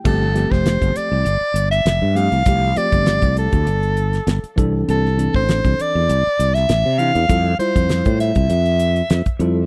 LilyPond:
<<
  \new Staff \with { instrumentName = "Soprano saxophone" } { \time 4/4 \key g \mixolydian \tempo 4 = 99 a'8. c''8. d''4~ d''16 e''8. f''8~ | f''8 d''4 a'2 r8 | a'8. c''8. d''4~ d''16 e''8. f''8~ | f''8 c''4 e''2 r8 | }
  \new Staff \with { instrumentName = "Tine electric piano" } { \time 4/4 \key g \mixolydian <f a c' g'>8 <f a c' g'>4. r4. <f a c' g'>8 | <f a c' g'>8 <f a c' g'>4. r4. <e c' d' a'>8~ | <e c' d' a'>8 <e c' d' a'>4. r4. <e c' d' e'>8 | <g e' f' a'>8 <g e' f' c''>4. r4. <g e' f' a'>8 | }
  \new Staff \with { instrumentName = "Fretless electric bass" } { \clef bass \time 4/4 \key g \mixolydian g,,8. f,,8 g,,16 r16 c,16 g,,16 r16 g,,8 f,,16 g,8 c,16 | c,8 r16 g,,8 c,8 d,16 g,,4 g,,16 r16 c,8 | c,8. a,,8 c,16 r16 e,16 c,16 r16 c,8 a,,16 c8 e,16 | f,8 r16 f,8 a,8 c,16 f,4 f,16 r16 f,8 | }
  \new DrumStaff \with { instrumentName = "Drums" } \drummode { \time 4/4 <cymc bd>8 <hh sn>16 <bd sn>16 <hh sn>16 <hh bd>16 <hh sn>8 hh8 hh16 hh16 <hh sn>8 hh16 hh16 | <hh bd>8 <hh sn>16 <hh bd>16 <hh sn>16 <hh bd>16 hh16 <hh bd>16 hh16 hh16 hh16 <hh sn>16 <hh sn>16 hh16 <hh bd>8 | hh16 sn16 hh16 bd16 <hh sn>16 <hh bd>16 hh8 hh8 hh16 <hh sn>16 <hh sn>8 hh16 hh16 | <hh bd>8 hh16 <hh bd>16 <hh sn>16 <hh bd>16 <hh sn>16 <hh bd>16 hh16 hh16 hh16 hh16 <hh sn>16 <hh bd>16 hh8 | }
>>